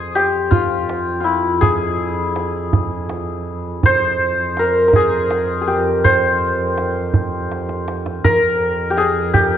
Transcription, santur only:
0, 0, Header, 1, 2, 480
1, 0, Start_track
1, 0, Tempo, 735294
1, 1065, Time_signature, 6, 3, 24, 8
1, 6251, End_track
2, 0, Start_track
2, 0, Title_t, "Santur"
2, 0, Program_c, 0, 15
2, 0, Note_on_c, 0, 68, 109
2, 0, Note_on_c, 0, 72, 55
2, 100, Note_on_c, 0, 67, 84
2, 139, Note_off_c, 0, 68, 0
2, 331, Note_on_c, 0, 65, 83
2, 739, Note_off_c, 0, 72, 0
2, 783, Note_off_c, 0, 65, 0
2, 785, Note_on_c, 0, 65, 51
2, 811, Note_on_c, 0, 64, 64
2, 850, Note_off_c, 0, 65, 0
2, 1051, Note_on_c, 0, 68, 89
2, 1090, Note_off_c, 0, 67, 0
2, 2517, Note_on_c, 0, 72, 104
2, 2997, Note_on_c, 0, 70, 78
2, 3033, Note_off_c, 0, 68, 0
2, 3092, Note_off_c, 0, 64, 0
2, 3182, Note_off_c, 0, 70, 0
2, 3184, Note_on_c, 0, 70, 58
2, 3236, Note_on_c, 0, 68, 89
2, 3662, Note_off_c, 0, 68, 0
2, 3664, Note_on_c, 0, 68, 52
2, 3704, Note_on_c, 0, 67, 60
2, 3743, Note_off_c, 0, 68, 0
2, 3942, Note_off_c, 0, 72, 0
2, 3945, Note_on_c, 0, 72, 98
2, 5032, Note_off_c, 0, 70, 0
2, 5382, Note_on_c, 0, 70, 106
2, 5667, Note_off_c, 0, 72, 0
2, 5750, Note_off_c, 0, 67, 0
2, 5812, Note_on_c, 0, 67, 67
2, 5860, Note_on_c, 0, 68, 85
2, 5899, Note_off_c, 0, 67, 0
2, 6094, Note_on_c, 0, 67, 90
2, 6133, Note_off_c, 0, 68, 0
2, 6251, Note_off_c, 0, 67, 0
2, 6251, Note_off_c, 0, 70, 0
2, 6251, End_track
0, 0, End_of_file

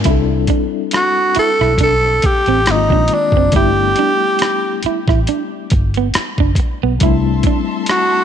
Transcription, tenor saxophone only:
0, 0, Header, 1, 2, 480
1, 0, Start_track
1, 0, Tempo, 869565
1, 29, Time_signature, 4, 2, 24, 8
1, 4550, End_track
2, 0, Start_track
2, 0, Title_t, "Tenor saxophone"
2, 0, Program_c, 0, 66
2, 529, Note_on_c, 0, 66, 79
2, 743, Note_off_c, 0, 66, 0
2, 768, Note_on_c, 0, 69, 93
2, 982, Note_off_c, 0, 69, 0
2, 1009, Note_on_c, 0, 69, 93
2, 1248, Note_on_c, 0, 67, 86
2, 1256, Note_off_c, 0, 69, 0
2, 1494, Note_on_c, 0, 63, 80
2, 1502, Note_off_c, 0, 67, 0
2, 1733, Note_on_c, 0, 62, 86
2, 1741, Note_off_c, 0, 63, 0
2, 1961, Note_off_c, 0, 62, 0
2, 1964, Note_on_c, 0, 67, 82
2, 2654, Note_off_c, 0, 67, 0
2, 4363, Note_on_c, 0, 66, 88
2, 4550, Note_off_c, 0, 66, 0
2, 4550, End_track
0, 0, End_of_file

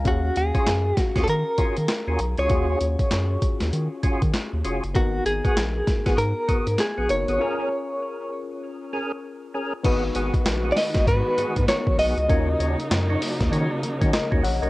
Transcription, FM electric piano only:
0, 0, Header, 1, 2, 480
1, 0, Start_track
1, 0, Key_signature, -6, "minor"
1, 0, Tempo, 612245
1, 41, Time_signature, 4, 2, 24, 8
1, 11523, End_track
2, 0, Start_track
2, 0, Title_t, "FM electric piano"
2, 0, Program_c, 0, 5
2, 0, Control_c, 0, 64, 127
2, 35, Note_on_c, 0, 61, 67
2, 42, Note_on_c, 0, 77, 63
2, 47, Note_on_c, 0, 66, 62
2, 51, Control_c, 0, 64, 0
2, 55, Note_on_c, 0, 68, 75
2, 202, Control_c, 0, 64, 127
2, 1927, Note_off_c, 0, 61, 0
2, 1930, Note_off_c, 0, 77, 0
2, 1932, Note_off_c, 0, 66, 0
2, 1936, Note_off_c, 0, 68, 0
2, 1954, Note_on_c, 0, 61, 67
2, 1961, Note_on_c, 0, 65, 57
2, 1966, Note_on_c, 0, 66, 61
2, 1974, Note_on_c, 0, 68, 75
2, 3846, Note_off_c, 0, 61, 0
2, 3850, Note_off_c, 0, 65, 0
2, 3852, Note_off_c, 0, 66, 0
2, 3856, Note_off_c, 0, 68, 0
2, 3874, Note_on_c, 0, 59, 70
2, 3879, Note_on_c, 0, 63, 58
2, 3885, Note_on_c, 0, 66, 59
2, 3890, Control_c, 0, 64, 0
2, 3892, Note_on_c, 0, 70, 69
2, 4013, Control_c, 0, 64, 127
2, 5526, Note_off_c, 0, 59, 0
2, 5529, Note_off_c, 0, 63, 0
2, 5532, Note_off_c, 0, 66, 0
2, 5535, Note_off_c, 0, 70, 0
2, 5557, Note_on_c, 0, 59, 51
2, 5557, Note_on_c, 0, 63, 48
2, 5561, Note_on_c, 0, 66, 47
2, 5567, Note_on_c, 0, 70, 57
2, 5789, Note_on_c, 0, 61, 68
2, 5797, Note_on_c, 0, 65, 62
2, 5799, Note_off_c, 0, 59, 0
2, 5799, Note_off_c, 0, 63, 0
2, 5801, Note_off_c, 0, 66, 0
2, 5801, Note_off_c, 0, 70, 0
2, 5804, Note_on_c, 0, 68, 62
2, 5810, Note_on_c, 0, 70, 74
2, 5812, Control_c, 0, 64, 0
2, 5926, Control_c, 0, 64, 127
2, 7683, Note_off_c, 0, 61, 0
2, 7687, Note_off_c, 0, 65, 0
2, 7691, Note_off_c, 0, 68, 0
2, 7694, Note_off_c, 0, 70, 0
2, 7710, Note_on_c, 0, 59, 72
2, 7717, Note_on_c, 0, 63, 72
2, 7722, Note_on_c, 0, 66, 72
2, 7729, Note_on_c, 0, 71, 83
2, 7731, Control_c, 0, 64, 0
2, 7849, Control_c, 0, 64, 127
2, 9127, Note_off_c, 0, 59, 0
2, 9130, Note_off_c, 0, 63, 0
2, 9133, Note_off_c, 0, 66, 0
2, 9136, Note_off_c, 0, 71, 0
2, 9158, Note_on_c, 0, 59, 52
2, 9160, Note_on_c, 0, 63, 49
2, 9162, Note_on_c, 0, 66, 48
2, 9166, Note_on_c, 0, 70, 61
2, 9628, Note_on_c, 0, 61, 66
2, 9632, Note_off_c, 0, 66, 0
2, 9635, Note_on_c, 0, 65, 59
2, 9637, Note_off_c, 0, 70, 0
2, 9639, Note_off_c, 0, 59, 0
2, 9641, Note_off_c, 0, 63, 0
2, 9641, Note_on_c, 0, 66, 60
2, 9646, Note_on_c, 0, 70, 72
2, 9652, Control_c, 0, 64, 0
2, 9787, Control_c, 0, 64, 127
2, 11055, Note_off_c, 0, 70, 0
2, 11080, Note_on_c, 0, 75, 70
2, 11085, Note_on_c, 0, 70, 60
2, 11308, Note_off_c, 0, 75, 0
2, 11311, Note_off_c, 0, 70, 0
2, 11317, Note_on_c, 0, 78, 80
2, 11321, Note_on_c, 0, 73, 62
2, 11457, Note_off_c, 0, 78, 0
2, 11460, Note_off_c, 0, 73, 0
2, 11463, Note_on_c, 0, 75, 67
2, 11466, Note_on_c, 0, 70, 60
2, 11523, Note_off_c, 0, 61, 0
2, 11523, Note_off_c, 0, 65, 0
2, 11523, Note_off_c, 0, 66, 0
2, 11523, Note_off_c, 0, 70, 0
2, 11523, Note_off_c, 0, 75, 0
2, 11523, End_track
0, 0, End_of_file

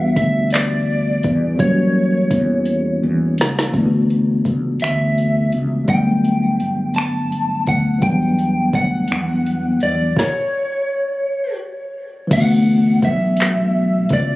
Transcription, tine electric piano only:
0, 0, Header, 1, 2, 480
1, 0, Start_track
1, 0, Key_signature, 2, "major"
1, 0, Tempo, 714286
1, 1074, Time_signature, 6, 3, 24, 8
1, 9648, End_track
2, 0, Start_track
2, 0, Title_t, "Tine electric piano"
2, 0, Program_c, 0, 4
2, 0, Control_c, 0, 64, 127
2, 0, Note_on_c, 0, 52, 64
2, 0, Note_on_c, 0, 55, 62
2, 0, Note_on_c, 0, 59, 62
2, 0, Note_on_c, 0, 62, 58
2, 0, Note_on_c, 0, 66, 73
2, 1034, Note_off_c, 0, 52, 0
2, 1043, Note_off_c, 0, 55, 0
2, 1044, Note_on_c, 0, 52, 69
2, 1049, Note_off_c, 0, 59, 0
2, 1056, Note_off_c, 0, 62, 0
2, 1060, Note_on_c, 0, 55, 64
2, 1064, Note_off_c, 0, 66, 0
2, 1073, Note_on_c, 0, 58, 59
2, 1084, Control_c, 0, 64, 0
2, 1090, Note_on_c, 0, 61, 59
2, 1105, Note_on_c, 0, 66, 72
2, 1179, Control_c, 0, 64, 127
2, 2472, Note_off_c, 0, 52, 0
2, 2480, Note_off_c, 0, 55, 0
2, 2486, Note_off_c, 0, 58, 0
2, 2492, Note_on_c, 0, 52, 64
2, 2495, Note_off_c, 0, 61, 0
2, 2502, Note_off_c, 0, 66, 0
2, 2506, Note_on_c, 0, 57, 64
2, 2519, Note_on_c, 0, 59, 66
2, 2523, Control_c, 0, 64, 0
2, 2534, Note_on_c, 0, 62, 61
2, 2549, Note_on_c, 0, 64, 58
2, 2575, Note_off_c, 0, 64, 0
2, 2594, Note_on_c, 0, 66, 77
2, 2624, Control_c, 0, 64, 127
2, 3916, Note_off_c, 0, 52, 0
2, 3923, Note_off_c, 0, 57, 0
2, 3929, Note_off_c, 0, 59, 0
2, 3929, Note_on_c, 0, 55, 57
2, 3937, Note_off_c, 0, 62, 0
2, 3941, Note_on_c, 0, 57, 55
2, 3956, Note_on_c, 0, 59, 54
2, 3962, Control_c, 0, 64, 0
2, 3967, Note_off_c, 0, 66, 0
2, 3973, Note_on_c, 0, 62, 55
2, 3986, Note_on_c, 0, 54, 65
2, 4081, Control_c, 0, 64, 127
2, 5354, Note_off_c, 0, 55, 0
2, 5361, Note_off_c, 0, 57, 0
2, 5366, Note_on_c, 0, 52, 64
2, 5368, Note_off_c, 0, 59, 0
2, 5377, Note_off_c, 0, 62, 0
2, 5382, Note_on_c, 0, 55, 52
2, 5383, Note_off_c, 0, 54, 0
2, 5397, Note_on_c, 0, 59, 56
2, 5401, Control_c, 0, 64, 0
2, 5411, Note_on_c, 0, 62, 53
2, 5426, Note_on_c, 0, 54, 67
2, 5529, Control_c, 0, 64, 127
2, 6793, Note_off_c, 0, 52, 0
2, 6801, Note_off_c, 0, 55, 0
2, 6809, Note_off_c, 0, 59, 0
2, 6816, Note_off_c, 0, 62, 0
2, 6823, Note_off_c, 0, 54, 0
2, 6843, Control_c, 0, 64, 0
2, 8248, Note_on_c, 0, 52, 71
2, 8263, Note_on_c, 0, 57, 62
2, 8278, Note_on_c, 0, 59, 58
2, 8293, Note_on_c, 0, 62, 59
2, 8309, Note_on_c, 0, 66, 68
2, 8408, Control_c, 0, 64, 127
2, 9648, Note_off_c, 0, 52, 0
2, 9648, Note_off_c, 0, 57, 0
2, 9648, Note_off_c, 0, 59, 0
2, 9648, Note_off_c, 0, 62, 0
2, 9648, Note_off_c, 0, 66, 0
2, 9648, End_track
0, 0, End_of_file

